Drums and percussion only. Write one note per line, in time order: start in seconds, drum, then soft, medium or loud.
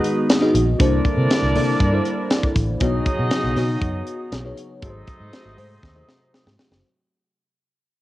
0.04 closed hi-hat medium
0.30 snare loud
0.30 closed hi-hat medium
0.55 closed hi-hat medium
0.80 kick loud
0.80 closed hi-hat medium
1.05 kick loud
1.05 closed hi-hat medium
1.31 snare loud
1.31 closed hi-hat loud
1.55 open hi-hat medium
1.80 kick loud
1.80 closed hi-hat medium
2.05 closed hi-hat medium
2.31 snare loud
2.31 closed hi-hat medium
2.43 kick medium
2.56 kick loud
2.56 closed hi-hat medium
2.80 kick loud
2.80 closed hi-hat medium
3.06 kick loud
3.06 closed hi-hat medium
3.31 snare loud
3.31 closed hi-hat medium
3.56 snare soft
3.56 open hi-hat medium
3.82 kick loud
3.82 closed hi-hat medium
4.07 closed hi-hat medium
4.32 snare loud
4.32 closed hi-hat medium
4.58 closed hi-hat medium
4.82 kick loud
4.82 closed hi-hat loud
5.07 kick loud
5.07 closed hi-hat medium
5.33 snare loud
5.33 closed hi-hat medium
5.58 open hi-hat medium
5.83 kick loud
5.83 snare medium
6.09 snare medium
6.34 snare medium
6.47 snare medium
6.59 snare loud
6.72 snare medium